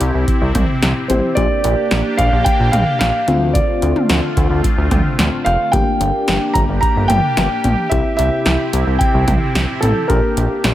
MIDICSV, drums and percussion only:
0, 0, Header, 1, 2, 480
1, 0, Start_track
1, 0, Tempo, 545455
1, 1205, Time_signature, 4, 2, 24, 8
1, 9452, End_track
2, 0, Start_track
2, 0, Title_t, "Drums"
2, 5, Note_on_c, 9, 42, 77
2, 93, Note_off_c, 9, 42, 0
2, 244, Note_on_c, 9, 36, 93
2, 246, Note_on_c, 9, 42, 76
2, 332, Note_off_c, 9, 36, 0
2, 334, Note_off_c, 9, 42, 0
2, 483, Note_on_c, 9, 36, 100
2, 483, Note_on_c, 9, 42, 73
2, 485, Note_on_c, 9, 45, 92
2, 485, Note_on_c, 9, 56, 67
2, 571, Note_off_c, 9, 36, 0
2, 571, Note_off_c, 9, 42, 0
2, 573, Note_off_c, 9, 45, 0
2, 573, Note_off_c, 9, 56, 0
2, 726, Note_on_c, 9, 38, 107
2, 726, Note_on_c, 9, 42, 76
2, 814, Note_off_c, 9, 38, 0
2, 814, Note_off_c, 9, 42, 0
2, 965, Note_on_c, 9, 42, 69
2, 966, Note_on_c, 9, 47, 64
2, 1053, Note_off_c, 9, 42, 0
2, 1054, Note_off_c, 9, 47, 0
2, 1204, Note_on_c, 9, 36, 119
2, 1204, Note_on_c, 9, 42, 83
2, 1292, Note_off_c, 9, 36, 0
2, 1292, Note_off_c, 9, 42, 0
2, 1444, Note_on_c, 9, 42, 72
2, 1532, Note_off_c, 9, 42, 0
2, 1681, Note_on_c, 9, 42, 64
2, 1683, Note_on_c, 9, 38, 118
2, 1769, Note_off_c, 9, 42, 0
2, 1771, Note_off_c, 9, 38, 0
2, 1924, Note_on_c, 9, 36, 89
2, 1924, Note_on_c, 9, 42, 76
2, 2012, Note_off_c, 9, 36, 0
2, 2012, Note_off_c, 9, 42, 0
2, 2164, Note_on_c, 9, 36, 95
2, 2165, Note_on_c, 9, 42, 78
2, 2252, Note_off_c, 9, 36, 0
2, 2253, Note_off_c, 9, 42, 0
2, 2404, Note_on_c, 9, 42, 72
2, 2406, Note_on_c, 9, 45, 94
2, 2406, Note_on_c, 9, 56, 67
2, 2492, Note_off_c, 9, 42, 0
2, 2494, Note_off_c, 9, 45, 0
2, 2494, Note_off_c, 9, 56, 0
2, 2646, Note_on_c, 9, 42, 76
2, 2647, Note_on_c, 9, 38, 107
2, 2734, Note_off_c, 9, 42, 0
2, 2735, Note_off_c, 9, 38, 0
2, 2884, Note_on_c, 9, 42, 69
2, 2886, Note_on_c, 9, 47, 64
2, 2972, Note_off_c, 9, 42, 0
2, 2974, Note_off_c, 9, 47, 0
2, 3125, Note_on_c, 9, 36, 123
2, 3125, Note_on_c, 9, 42, 79
2, 3213, Note_off_c, 9, 36, 0
2, 3213, Note_off_c, 9, 42, 0
2, 3364, Note_on_c, 9, 42, 72
2, 3452, Note_off_c, 9, 42, 0
2, 3486, Note_on_c, 9, 47, 91
2, 3574, Note_off_c, 9, 47, 0
2, 3603, Note_on_c, 9, 42, 63
2, 3605, Note_on_c, 9, 38, 121
2, 3691, Note_off_c, 9, 42, 0
2, 3693, Note_off_c, 9, 38, 0
2, 3844, Note_on_c, 9, 36, 91
2, 3846, Note_on_c, 9, 42, 76
2, 3932, Note_off_c, 9, 36, 0
2, 3934, Note_off_c, 9, 42, 0
2, 4084, Note_on_c, 9, 36, 96
2, 4086, Note_on_c, 9, 42, 77
2, 4172, Note_off_c, 9, 36, 0
2, 4174, Note_off_c, 9, 42, 0
2, 4323, Note_on_c, 9, 36, 101
2, 4323, Note_on_c, 9, 42, 75
2, 4325, Note_on_c, 9, 45, 91
2, 4325, Note_on_c, 9, 56, 68
2, 4411, Note_off_c, 9, 36, 0
2, 4411, Note_off_c, 9, 42, 0
2, 4413, Note_off_c, 9, 45, 0
2, 4413, Note_off_c, 9, 56, 0
2, 4566, Note_on_c, 9, 38, 105
2, 4566, Note_on_c, 9, 42, 78
2, 4654, Note_off_c, 9, 38, 0
2, 4654, Note_off_c, 9, 42, 0
2, 4806, Note_on_c, 9, 42, 67
2, 4807, Note_on_c, 9, 56, 63
2, 4894, Note_off_c, 9, 42, 0
2, 4895, Note_off_c, 9, 56, 0
2, 5045, Note_on_c, 9, 36, 125
2, 5045, Note_on_c, 9, 42, 82
2, 5133, Note_off_c, 9, 36, 0
2, 5133, Note_off_c, 9, 42, 0
2, 5286, Note_on_c, 9, 42, 70
2, 5374, Note_off_c, 9, 42, 0
2, 5524, Note_on_c, 9, 42, 64
2, 5526, Note_on_c, 9, 38, 120
2, 5612, Note_off_c, 9, 42, 0
2, 5614, Note_off_c, 9, 38, 0
2, 5765, Note_on_c, 9, 36, 92
2, 5768, Note_on_c, 9, 42, 79
2, 5853, Note_off_c, 9, 36, 0
2, 5856, Note_off_c, 9, 42, 0
2, 6005, Note_on_c, 9, 36, 97
2, 6008, Note_on_c, 9, 42, 76
2, 6093, Note_off_c, 9, 36, 0
2, 6096, Note_off_c, 9, 42, 0
2, 6246, Note_on_c, 9, 42, 74
2, 6248, Note_on_c, 9, 45, 92
2, 6248, Note_on_c, 9, 56, 66
2, 6334, Note_off_c, 9, 42, 0
2, 6336, Note_off_c, 9, 45, 0
2, 6336, Note_off_c, 9, 56, 0
2, 6487, Note_on_c, 9, 38, 103
2, 6487, Note_on_c, 9, 42, 78
2, 6575, Note_off_c, 9, 38, 0
2, 6575, Note_off_c, 9, 42, 0
2, 6725, Note_on_c, 9, 42, 68
2, 6726, Note_on_c, 9, 47, 66
2, 6813, Note_off_c, 9, 42, 0
2, 6814, Note_off_c, 9, 47, 0
2, 6965, Note_on_c, 9, 36, 127
2, 6966, Note_on_c, 9, 42, 83
2, 7053, Note_off_c, 9, 36, 0
2, 7054, Note_off_c, 9, 42, 0
2, 7204, Note_on_c, 9, 42, 74
2, 7292, Note_off_c, 9, 42, 0
2, 7442, Note_on_c, 9, 42, 65
2, 7444, Note_on_c, 9, 38, 121
2, 7530, Note_off_c, 9, 42, 0
2, 7532, Note_off_c, 9, 38, 0
2, 7685, Note_on_c, 9, 42, 80
2, 7773, Note_off_c, 9, 42, 0
2, 7925, Note_on_c, 9, 36, 101
2, 7927, Note_on_c, 9, 42, 77
2, 8013, Note_off_c, 9, 36, 0
2, 8015, Note_off_c, 9, 42, 0
2, 8164, Note_on_c, 9, 36, 105
2, 8164, Note_on_c, 9, 42, 72
2, 8166, Note_on_c, 9, 45, 94
2, 8166, Note_on_c, 9, 56, 68
2, 8252, Note_off_c, 9, 36, 0
2, 8252, Note_off_c, 9, 42, 0
2, 8254, Note_off_c, 9, 45, 0
2, 8254, Note_off_c, 9, 56, 0
2, 8407, Note_on_c, 9, 42, 77
2, 8408, Note_on_c, 9, 38, 108
2, 8495, Note_off_c, 9, 42, 0
2, 8496, Note_off_c, 9, 38, 0
2, 8647, Note_on_c, 9, 42, 68
2, 8648, Note_on_c, 9, 47, 65
2, 8735, Note_off_c, 9, 42, 0
2, 8736, Note_off_c, 9, 47, 0
2, 8886, Note_on_c, 9, 36, 127
2, 8886, Note_on_c, 9, 42, 83
2, 8974, Note_off_c, 9, 36, 0
2, 8974, Note_off_c, 9, 42, 0
2, 9127, Note_on_c, 9, 42, 72
2, 9215, Note_off_c, 9, 42, 0
2, 9364, Note_on_c, 9, 42, 65
2, 9366, Note_on_c, 9, 38, 119
2, 9452, Note_off_c, 9, 38, 0
2, 9452, Note_off_c, 9, 42, 0
2, 9452, End_track
0, 0, End_of_file